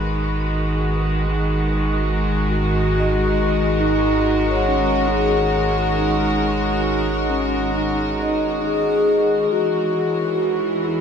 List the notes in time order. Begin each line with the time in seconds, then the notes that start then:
Already playing: G#1 D#3 G#3 F#4 B4
1.89 A#4
2.48 F#4
3.00 D#5
3.80 D#4
4.50 C#5
4.56 F#5
4.68 C#4
5.09 G#4
5.97 D#4
7.30 C#4
7.75 D#4
8.22 D#5
8.64 G#4
9.50 E2 E3 F#4
10.05 A#4
10.10 C#5
10.15 D#5
10.84 E4